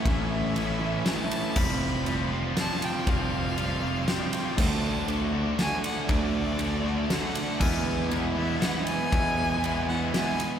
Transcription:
<<
  \new Staff \with { instrumentName = "Violin" } { \time 3/4 \key d \lydian \tempo 4 = 119 e''2 a''4 | b''4. r8 a''8 g''8 | f''2 g''4 | a''4. r8 gis''8 fis''8 |
d''2 fis''4 | gis''4 r8 e''8 fis''8 gis''8~ | gis''4. fis''8 gis''4 | }
  \new Staff \with { instrumentName = "Distorted electric guitar" } { \time 3/4 \key d \lydian <a, e a cis' e'>4 <a, e a cis' e'>8 <a, e a cis' e'>8 <a, e a cis' e'>4 | <f g c' f'>4 <f g c' f'>8 <f g c' f'>8 <f g c' f'>4 | <f g c' f'>4 <f g c' f'>8 <f g c' f'>8 <f g c' f'>4 | <d a d' fis'>4 <d a d' fis'>8 <d a d' fis'>8 <d a d' fis'>4 |
<d a d' fis'>4 <d a d' fis'>8 <d a d' fis'>8 <d a d' fis'>4 | <e gis b e'>4 <e gis b e'>8 <e gis b e'>8 <e gis b e'>4 | <e gis b e'>4 <e gis b e'>8 <e gis b e'>8 <e gis b e'>4 | }
  \new Staff \with { instrumentName = "Distorted electric guitar" } { \time 3/4 \key d \lydian <a, e a cis' e'>4 <a, e a cis' e'>8 <a, e a cis' e'>8 <a, e a cis' e'>4 | <f g c' f'>4 <f g c' f'>8 <f g c' f'>8 <f g c' f'>4 | <f g c' f'>4 <f g c' f'>8 <f g c' f'>8 <f g c' f'>4 | <d a d' fis'>4 <d a d' fis'>8 <d a d' fis'>8 <d a d' fis'>4 |
<d a d' fis'>4 <d a d' fis'>8 <d a d' fis'>8 <d a d' fis'>4 | <e gis b e'>4 <e gis b e'>8 <e gis b e'>8 <e gis b e'>4 | <e gis b e'>4 <e gis b e'>8 <e gis b e'>8 <e gis b e'>4 | }
  \new Staff \with { instrumentName = "Picked electric bass" } { \clef bass \time 3/4 \key d \lydian a,,2 r4 | f,,2 r4 | f,,2 r4 | d,2 r4 |
d,2 r4 | e,2 r4 | e,2 r4 | }
  \new DrumStaff \with { instrumentName = "Drums" } \drummode { \time 3/4 <bd cymr>4 cymr4 <cymr sn>8 cymr8 | <cymc bd>4 cymr4 <cymr sn>8 cymr8 | <bd cymr>4 cymr4 <cymr sn>8 cymr8 | <cymc bd>4 cymr4 <cymr sn>8 cymr8 |
<bd cymr>4 cymr4 <cymr sn>8 cymr8 | <cymc bd>4 cymr4 <cymr sn>8 cymr8 | <bd cymr>4 cymr4 <cymr sn>8 cymr8 | }
>>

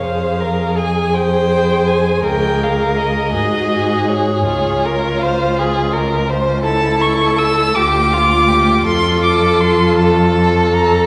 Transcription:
<<
  \new Staff \with { instrumentName = "Violin" } { \time 6/8 \key des \lydian \tempo 4. = 54 f''4 aes''8 g''4 aes''8 | g''8 f''8 ees''4. des''8~ | des''4 f''8 r4. | \key f \major a''8 cis'''8 e'''8 d'''4. |
c'''8 d'''8 c'''8 a''4 bes''8 | }
  \new Staff \with { instrumentName = "Violin" } { \time 6/8 \key des \lydian c''8 bes'8 aes'8 c''4. | bes'4. aes'4. | aes'8 bes'8 c''8 aes'8 bes'8 c''8 | \key f \major a'4. g'8 f'8 g'8 |
a'4. a'4. | }
  \new Staff \with { instrumentName = "Viola" } { \time 6/8 \key des \lydian aes'2.~ | aes'4. ges'4. | f'2. | \key f \major e'4. f'4.~ |
f'2. | }
  \new Staff \with { instrumentName = "Cello" } { \clef bass \time 6/8 \key des \lydian f,2. | des,4. aes,4. | des,2.~ | \key f \major des,4. d,4. |
f,2. | }
>>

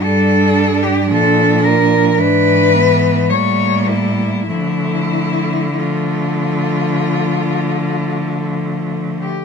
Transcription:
<<
  \new Staff \with { instrumentName = "Cello" } { \time 4/4 \key d \minor \tempo 4 = 49 a'8. g'16 a'8 bes'8 b'4 cis''8 e'8 | e'4 f'2~ f'8 r16 g'16 | }
  \new Staff \with { instrumentName = "Cello" } { \time 4/4 \key d \minor d'2 d'8 b8 bes4 | a4 a2. | }
  \new Staff \with { instrumentName = "Cello" } { \clef bass \time 4/4 \key d \minor g4 f4 e4 g4 | f4 f2. | }
  \new Staff \with { instrumentName = "Cello" } { \clef bass \time 4/4 \key d \minor g,4 bes,4 gis,4 a,4 | d1 | }
>>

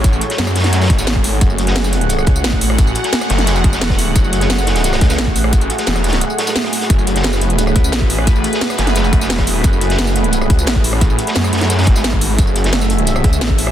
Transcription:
<<
  \new Staff \with { instrumentName = "Analog synth pad" } { \time 4/4 \key fis \minor \tempo 4 = 175 << { cis''1 | fis''1~ | fis''1~ | fis''1~ |
fis''1 | b'1~ | b'1~ | b'1~ |
b'1 | e''1 | } \\ { <a fis' gis'>1~ | <a fis' gis'>1~ | <a fis' gis'>1~ | <a fis' gis'>1~ |
<a fis' gis'>1~ | <a fis' gis'>1~ | <a fis' gis'>1~ | <a fis' gis'>1~ |
<a fis' gis'>1~ | <a fis' gis'>1 | } >> }
  \new Staff \with { instrumentName = "Detuned saw bass" } { \clef bass \time 4/4 \key fis \minor a,,8 r8 fis,8 fis,4 gis,,4. | fis,,2~ fis,,8 cis,8 a,,4~ | a,,8 r4 fis,,4 fis,,8 e,,4 | fis,,2~ fis,,8 cis,8 a,,4~ |
a,,8 r8 e,,4 r2 | fis,,2~ fis,,8 cis,8 a,,4~ | a,,8 r4 fis,,4 fis,,8 e,,4 | fis,,2~ fis,,8 cis,8 a,,4~ |
a,,8 r8 fis,8 fis,4 gis,,4. | fis,,2~ fis,,8 cis,8 a,,4 | }
  \new DrumStaff \with { instrumentName = "Drums" } \drummode { \time 4/4 <hh bd tamb>16 tamb16 hh16 <hh sn>16 <hh sn tamb>16 <ss sn tamb>16 <hh sn>32 <hh sn>32 <hh sn>16 <hh sn tamb>16 <hh sn tamb>32 <hh sn>32 <hh bd>16 <sn tamb>16 <hh sn tamb>16 <bd ss>16 <hh hho tamb>8 | <hh bd tamb>16 tamb16 hh16 <hh sn>16 <hh sn tamb>16 <sn tamb>16 hh16 hh16 <hh tamb>16 <ss tamb>16 <hh bd>16 tamb16 <hh sn tamb>16 <bd sn>16 <hh hho tamb>16 ss16 | <hh bd tamb>16 tamb16 hh16 <hh sn>16 <hh sn tamb>16 <ss sn tamb>16 <hh sn>16 <hh sn>16 <hh sn tamb>16 <hh tamb>16 <hh bd>16 <sn tamb>16 <hh sn tamb>16 <hh bd ss sn>16 <hh hho tamb>8 | <hh bd tamb>16 tamb16 hh16 <hh sn>16 <hh sn tamb>16 <sn tamb>16 <hh sn>16 <hh sn>16 <hh sn tamb>16 <hh ss sn tamb>16 <hh bd sn>16 <hh sn tamb>16 <hh sn tamb>16 <bd sn>16 <hh hho tamb>16 ss16 |
<hh bd tamb>16 <hh tamb>16 hh16 <hh sn>16 <hh sn tamb>16 <ss sn tamb>16 <hh tamb>32 <hh sn>32 <hh sn>16 <hh tamb>16 tamb16 <hh sn>16 <hh sn tamb>16 <hh sn tamb>16 <hh ss sn>16 <hho sn tamb>16 <hh sn>16 | <hh bd tamb>16 tamb16 hh16 <hh sn>16 <hh sn tamb>16 <sn tamb>16 hh16 hh16 <hh tamb>16 <ss tamb>16 <hh bd>16 tamb16 <hh sn tamb>16 <bd sn>16 <hh hho tamb>16 ss16 | <hh bd tamb>16 tamb16 hh16 <hh sn>16 <hh sn tamb>16 <ss sn tamb>16 <hh sn>16 <hh sn>16 <hh sn tamb>16 <hh tamb>16 <hh bd>16 <sn tamb>16 <hh sn tamb>16 <hh bd ss sn>16 <hh hho tamb>8 | <hh bd tamb>16 tamb16 hh16 <hh sn>16 <hh sn tamb>16 <sn tamb>16 hh16 hh16 <hh tamb>16 <ss tamb>16 <hh bd>16 tamb16 <hh sn tamb>16 <bd sn>16 <hh hho tamb>16 ss16 |
<hh bd tamb>16 tamb16 hh16 <hh sn>16 <hh sn tamb>16 <ss sn tamb>16 <hh sn>32 <hh sn>32 <hh sn>16 <hh sn tamb>16 <hh sn tamb>32 <hh sn>32 <hh bd>16 <sn tamb>16 <hh sn tamb>16 <bd ss>16 <hh hho tamb>8 | <hh bd tamb>16 tamb16 hh16 <hh sn>16 <hh sn tamb>16 <sn tamb>16 hh16 hh16 <hh tamb>16 <ss tamb>16 <hh bd>16 tamb16 <hh sn tamb>16 <bd sn>16 <hh hho tamb>16 ss16 | }
>>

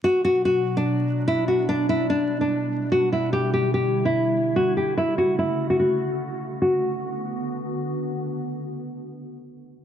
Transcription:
<<
  \new Staff \with { instrumentName = "Nylon-string guitar" } { \time 4/4 \key b \minor \tempo 4 = 146 fis'8 fis'8 fis'8. d'4~ d'16 e'8 fis'8 | d'8 e'8 d'8. d'4~ d'16 fis'8 e'8 | g'8 g'8 g'8. e'4~ e'16 fis'8 g'8 | e'8 fis'8 e'8. fis'16 fis'2 |
fis'2. r4 | r1 | }
  \new Staff \with { instrumentName = "Ambient pad" } { \clef bass \time 4/4 \key b \minor << { <b, d'>1~ | <b, d'>1 | <d e'>1 | <cis fis'>1 |
<d b fis'>1~ | <d b fis'>1 | } \\ { fis1 | g1~ | g1 | a1 |
r1 | r1 | } >> }
>>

